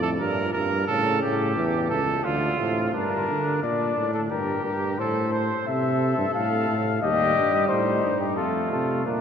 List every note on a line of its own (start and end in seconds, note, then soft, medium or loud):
0.00 0.22 F2 medium
0.00 0.19 A2 medium
0.00 0.10 A4 medium
0.20 0.54 G2 medium
0.20 0.87 A#2 medium
0.20 0.52 A#4 medium
0.53 0.88 G2 medium
0.53 0.87 A#4 medium
0.87 1.22 A2 medium
0.87 1.55 C#3 medium
0.87 1.21 A4 medium
1.22 1.58 A2 medium
1.22 1.89 G4 medium
1.55 1.91 E2 medium
1.55 1.99 E3 medium
1.90 2.24 C#2 medium
1.90 2.25 A4 medium
2.24 2.58 D2 medium
2.24 2.61 D3 medium
2.24 2.93 F4 medium
2.59 2.93 A2 medium
2.59 2.94 C3 medium
2.93 3.26 G2 medium
2.93 3.58 D4 medium
2.93 3.59 A#4 medium
3.29 3.62 D3 medium
3.63 3.96 A#2 medium
3.63 4.29 D4 medium
3.63 4.13 D5 medium
3.97 4.30 A2 medium
4.14 4.22 A4 medium
4.30 4.64 G2 medium
4.30 4.97 G4 medium
4.30 4.64 A#4 medium
4.64 5.00 G2 medium
4.64 5.00 A#4 medium
4.98 5.50 A2 medium
4.98 5.32 A4 medium
4.98 5.66 C5 medium
5.32 5.66 C5 medium
5.67 6.17 C3 medium
5.67 6.86 A4 medium
5.67 6.34 E5 medium
6.18 6.26 G2 medium
6.35 6.68 A2 medium
6.35 7.01 F5 medium
6.69 7.02 A2 medium
7.01 7.35 D#2 medium
7.01 8.33 G3 medium
7.01 7.68 G4 medium
7.01 7.68 D#5 medium
7.36 7.69 G2 medium
7.68 8.03 A2 medium
7.68 8.38 D#4 medium
7.68 8.19 C5 medium
8.04 8.39 G2 medium
8.20 8.36 G4 medium
8.36 8.72 F2 medium
8.36 9.05 A3 medium
8.36 9.05 F4 medium
8.36 8.70 A4 medium
8.72 9.06 C3 medium
8.72 9.05 A4 medium
9.05 9.21 A#2 medium
9.05 9.21 A#3 medium
9.05 9.21 D4 medium
9.05 9.21 A#4 medium